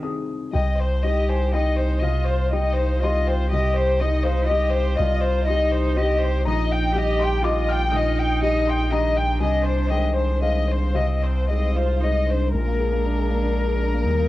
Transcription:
Already playing: grand piano C2 C4 D#4 G#4
0.03 grand piano C4 D#4 G#4 D#6
0.53 grand piano C2 G5, sub bass C2, violin section D#5
0.78 violin section C5
1.03 grand piano G3 D#4 G4, cello G4, violin section D#5
1.28 violin section C5, grand piano G#5
1.53 grand piano G3 D#4 G4 G5, cello D#4, violin section D#5
1.77 violin section C5
2.02 grand piano C2 F5, cello F4, violin section D#5
2.26 violin section C5
2.51 grand piano G3 D#4 G4 G5, cello D#4, violin section D#5
2.75 violin section C5
3.00 cello F4, violin section D#5, grand piano C6
3.04 grand piano G3 D#4 G4
3.27 violin section C5, grand piano G5
3.50 grand piano C2 D#5, cello G4, violin section D#5
3.75 violin section C5
3.99 grand piano G3 D#4 G4, cello D#4, violin section D#5
4.23 violin section C5, grand piano F5
4.46 cello G4, violin section D#5, grand piano D#5
4.50 grand piano G3 D#4 G4
4.70 violin section C5
4.96 sub bass C2, grand piano C2 D5, cello F4, violin section D#5
5.21 violin section C5
5.46 grand piano G3 D#4 D#5, cello D#4, violin section D#5
5.50 grand piano G4
5.71 violin section C5
5.96 grand piano G3 D#4 G4, cello G4, violin section D#5
6.21 violin section C5
6.45 sub bass A#1, grand piano A#1 A#5, cello D#4, violin section D#5
6.71 violin section G5
6.92 grand piano G3 D#4 G4, cello G4
6.97 violin section D#5
7.19 violin section G5, grand piano C6
7.41 grand piano G3 D#4 G4 D6, cello F4, violin section D#5
7.68 violin section G5, grand piano F6
7.90 grand piano A#1 D#6, cello D#4, violin section D#5
8.17 violin section G5
8.42 grand piano G3 D#4 G4, violin section D#5
8.67 violin section G5, grand piano C6
8.90 grand piano D#3 G3 G4 A#5, cello D4, violin section D#5
9.15 violin section G5
9.40 sub bass C2, grand piano C2 G#5, violin section D#5
9.63 violin section C5
9.88 grand piano D#3 G#3 C5 G5, violin section D#5
10.14 violin section C5
10.42 grand piano D#3 G#3 C5 F5, violin section D#5
10.69 violin section C5
10.94 grand piano C2 F5, cello C4, violin section D#5
11.24 violin section C5
11.49 grand piano G#3 D#4 C5 D#5, cello C4, violin section D#5
11.75 cello F4, violin section C5
12.00 grand piano G#3 D#4 C5, cello D#4, violin section D#5
12.27 cello D4, violin section C5
12.54 sub bass A#1, grand piano A#1, cello G#3, viola D4, violin section A#4
12.67 grand piano A#3
12.79 grand piano G#4
12.93 grand piano A#3
13.06 grand piano D4
13.18 grand piano G#4
13.30 grand piano A#3
13.43 grand piano D4
13.54 grand piano A#4
13.67 grand piano G#4
13.81 grand piano D4
13.94 grand piano A#3
14.05 sub bass D#2, grand piano D#2, cello G3, viola D#4
14.19 grand piano A#3

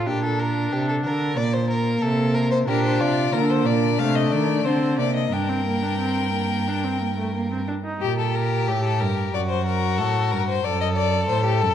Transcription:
0.07 cello A#2, viola D4, violin G4
0.25 violin A4
0.40 violin A#4
0.72 cello C3, violin G4
0.89 violin A4
1.05 cello D3, violin A#4
1.37 cello A#2, viola A#3, violin D5
1.53 violin C5
1.70 violin A#4
2.02 cello C3, violin A4
2.35 violin A#4
2.51 violin C5
2.68 cello A#2, viola D4, violin G4 A#4
2.85 violin C5
3.00 cello C3, violin F4 D5
3.33 cello D3, viola A#3, violin D4 A#4
3.50 violin C5
3.66 cello A#2, violin D5
3.99 cello C3, viola A3, violin F5
4.15 violin D#5
4.32 cello D#3, violin D5
4.65 cello D3, viola C4, violin C5
4.99 cello C3, viola A#3, violin D5
5.16 violin D#5
5.32 cello G2, viola D4, violin A#4 G5
5.49 viola C4
5.66 viola A#3
5.83 viola D4
6.00 viola C4
6.33 viola A#3
6.67 viola D4
6.84 viola C4
7.01 viola A#3
7.17 viola A3
7.35 viola A#3
7.51 viola C4
7.68 viola D4
7.85 viola D#4
8.01 cello A#2, violin G4
8.19 violin A4
8.35 violin A#4
8.68 cello A2, violin G4
8.84 violin A4
9.00 cello G2, violin A#4
9.34 cello F#2, violin F#4 D5
9.49 violin C5
9.66 violin A#4
9.98 cello A2, violin A4
10.31 cello G2, violin A#4
10.48 violin C5
10.64 cello F#2, violin A4 D5
10.81 violin D#5
10.97 violin D5
11.29 cello A2, violin C5
11.45 violin G4
11.61 cello F#2, violin A4

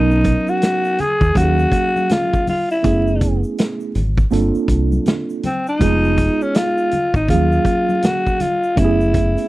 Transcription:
Already playing: fingered electric bass B1, tine electric piano F#3 B3 C#4 D#4 A#4, alto saxophone D#4
0.11 shaker
0.24 kick, closed hi-hat, shaker
0.48 alto saxophone F#4, shaker
0.62 snare, closed hi-hat, shaker
0.84 shaker
0.98 alto saxophone G#4, closed hi-hat, high conga, low conga, shaker
1.21 fingered electric bass D#2, kick, shaker
1.35 fingered electric bass D#2, tine electric piano F#3 A#3 C#4 G4 F5, alto saxophone F#4, kick, closed hi-hat, high conga, shaker
1.44 tine electric piano G#4
1.59 shaker
1.72 kick, closed hi-hat, shaker
1.96 high conga, shaker
2.09 alto saxophone F4, snare, closed hi-hat, low conga, shaker
2.33 kick, shaker
2.47 alto saxophone F4, open hi-hat, high conga, low conga, shaker
2.70 alto saxophone E4, shaker
2.83 fingered electric bass F#1, tine electric piano A3 B3 C#4 E4 G#4, kick, closed hi-hat, shaker
3.07 shaker
3.21 kick, closed hi-hat, shaker
3.44 shaker
3.58 snare, closed hi-hat, shaker
3.80 shaker
3.95 fingered electric bass G#1, closed hi-hat, high conga, low conga, shaker
4.17 kick, shaker
4.31 fingered electric bass G1, tine electric piano A#3 C4 D4 F4 A4, closed hi-hat, high conga, shaker
4.55 muted fingered electric bass stroke, shaker
4.68 fingered electric bass C2, kick, closed hi-hat, shaker
4.92 high conga, shaker
5.06 snare, closed hi-hat, low conga, shaker
5.30 shaker
5.43 alto saxophone C4, closed hi-hat, high conga, low conga, shaker
5.67 alto saxophone D#4, shaker
5.79 fingered electric bass F1, tine electric piano G#3 B3 D#4 F4 G#4, kick, closed hi-hat, shaker
6.04 shaker
6.17 kick, closed hi-hat, shaker
6.41 alto saxophone C#4, shaker
6.54 alto saxophone F4, snare, closed hi-hat, shaker
6.78 shaker
6.91 closed hi-hat, high conga, low conga, shaker
7.14 fingered electric bass G#1, alto saxophone D#4, kick, shaker
7.28 fingered electric bass D#2, tine electric piano F3 A#3 C#4 G#4 F5, alto saxophone F4, kick, closed hi-hat, high conga, shaker
7.34 tine electric piano F#3
7.52 shaker
7.65 kick, closed hi-hat, shaker
7.89 high conga, shaker
8.02 alto saxophone F#4, snare, closed hi-hat, low conga, shaker
8.27 kick, shaker
8.40 alto saxophone F4, closed hi-hat, high conga, low conga, shaker
8.63 shaker
8.76 fingered electric bass F#1, tine electric piano A3 B3 C#4 E4 G4, alto saxophone E4, kick, closed hi-hat, shaker
8.85 tine electric piano G#4
9.01 shaker
9.14 kick, closed hi-hat, shaker
9.37 closed hi-hat, shaker

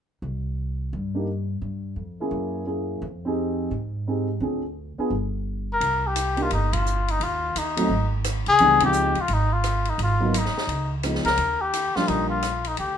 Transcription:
0.22 upright bass C2
0.93 upright bass G2
1.15 grand piano A#3 D4 D#4 G4
1.62 upright bass G2
1.96 upright bass F2
2.20 grand piano A#3 C#4 E4 G#4
2.31 upright bass F#2
2.66 grand piano A#3 C#4 E4 G#4
3.02 upright bass F2
3.25 grand piano C4 D#4 G4 G#4
3.71 upright bass G#2
4.07 grand piano C4 D#4 G4 G#4
4.40 upright bass D2, grand piano C4 D4 F4 G#4
4.98 grand piano B3 D4 F4 G#4, muted upright bass stroke
5.10 upright bass G1
5.73 muted trumpet A#4
5.81 upright bass C2, ride
6.07 muted trumpet G4
6.16 hi-hat pedal, ride
6.37 grand piano A#3 D4 D#4 G4, ride
6.43 muted trumpet F4
6.50 upright bass G1, muted trumpet D#4, ride
6.73 muted trumpet F4, kick, ride
6.86 hi-hat pedal
7.08 muted trumpet D#4, ride
7.20 upright bass D#2, muted trumpet F4, ride
7.55 upright bass D#2, muted trumpet D#4, hi-hat pedal, ride
7.77 grand piano F#3 A3 C4 D#4, ride
7.89 upright bass G#1
8.24 cross-stick, hi-hat pedal, ride
8.46 upright bass C2, muted trumpet G#4, ride
8.59 upright bass C#2, grand piano E3 G3 B3 D4, ride
8.80 grand piano F3 G#3 C4 D#4, kick, ride
8.85 muted trumpet G4
8.93 hi-hat pedal
9.15 upright bass D2, ride
9.21 muted trumpet F4
9.28 upright bass G#1, ride
9.33 muted trumpet D#4
9.53 muted trumpet F4
9.64 cross-stick, hi-hat pedal, ride
9.85 ride
9.89 muted trumpet D#4
9.98 upright bass G#1, ride
10.03 muted trumpet F4
10.20 grand piano F#3 A#3 B3 D#4
10.34 muted trumpet D#4, hi-hat pedal, ride
10.45 snare
10.54 muted upright bass stroke, snare
10.67 upright bass C#2, ride
11.03 grand piano F3 G#3 B3 D#4, cross-stick, hi-hat pedal, ride
11.15 snare
11.25 upright bass C#2, muted trumpet A#4, snare, ride
11.37 upright bass D#2, ride
11.61 muted trumpet G4
11.73 hi-hat pedal, ride
11.96 grand piano F3 G3 A#3 D4, muted trumpet F4, muted upright bass stroke, snare
12.08 upright bass A#1, muted trumpet D#4, ride
12.30 muted trumpet F4
12.42 cross-stick, hi-hat pedal, ride
12.64 muted trumpet D#4, ride
12.77 upright bass D2, muted trumpet G4, ride

